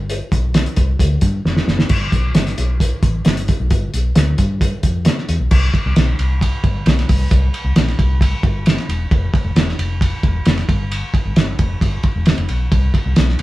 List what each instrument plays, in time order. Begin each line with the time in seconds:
Already playing: fingered electric bass G1
0.10 closed hi-hat
0.32 fingered electric bass B1, kick, closed hi-hat
0.54 snare, closed hi-hat
0.66 closed hi-hat
0.76 fingered electric bass C2, kick, closed hi-hat
0.99 fingered electric bass D2, kick, closed hi-hat
1.21 fingered electric bass G2, kick, closed hi-hat
1.45 fingered electric bass F1, snare
1.56 snare
1.67 fingered electric bass F#1, snare
1.79 snare
1.89 fingered electric bass G1, kick, crash
2.12 fingered electric bass B1, kick, closed hi-hat
2.35 fingered electric bass G1, snare, closed hi-hat
2.47 snare, closed hi-hat
2.58 fingered electric bass B1, closed hi-hat
2.80 kick, closed hi-hat
3.03 fingered electric bass A1, kick, closed hi-hat
3.25 fingered electric bass G1, snare, closed hi-hat
3.37 closed hi-hat
3.48 kick, closed hi-hat
3.60 fingered electric bass B1
3.70 fingered electric bass G1, kick, closed hi-hat
3.94 fingered electric bass B1, closed hi-hat
4.15 fingered electric bass D2, snare, closed hi-hat
4.38 fingered electric bass G2, kick, closed hi-hat
4.61 kick, closed hi-hat
4.83 fingered electric bass F2, kick, closed hi-hat
5.05 snare, closed hi-hat
5.18 snare
5.29 fingered electric bass E2, closed hi-hat
5.40 fingered electric bass B1
5.51 fingered electric bass C2, kick, crash
5.74 kick, ride
5.86 fingered electric bass C2
5.96 fingered electric bass B1, snare, ride
6.19 fingered electric bass C2, ride
6.41 kick, ride
6.64 fingered electric bass G1, kick, ride
6.86 fingered electric bass B1, snare, ride
6.99 snare, ride
7.09 fingered electric bass C2, kick, open hi-hat, ride
7.31 fingered electric bass C2, kick, hi-hat pedal, ride
7.54 ride
7.64 fingered electric bass C2
7.76 snare, ride
7.88 snare, ride
7.99 fingered electric bass C2, kick, ride
8.21 kick, ride
8.43 fingered electric bass G1, kick, ride
8.66 snare, ride
8.78 snare, ride
8.89 fingered electric bass E1, ride
9.11 fingered electric bass F1, kick, ride
9.34 kick, ride
9.45 fingered electric bass F1
9.55 fingered electric bass E1, snare, ride
9.69 snare
9.79 fingered electric bass F1, ride
10.01 kick, ride
10.23 fingered electric bass E1, kick, ride
10.45 fingered electric bass F1, snare, ride
10.58 snare, ride
10.69 fingered electric bass G1, kick, ride
10.92 ride
11.14 kick, ride
11.25 fingered electric bass G1
11.36 fingered electric bass G1, snare, ride
11.59 fingered electric bass F1, kick, ride
11.81 fingered electric bass G1, kick, ride
12.03 kick, ride
12.16 fingered electric bass E1
12.26 snare, ride
12.38 fingered electric bass F1, ride
12.49 fingered electric bass B1, ride
12.72 fingered electric bass C2, kick, ride
12.94 kick, ride
13.06 fingered electric bass C2
13.16 fingered electric bass B1, snare, ride
13.29 snare
13.39 ride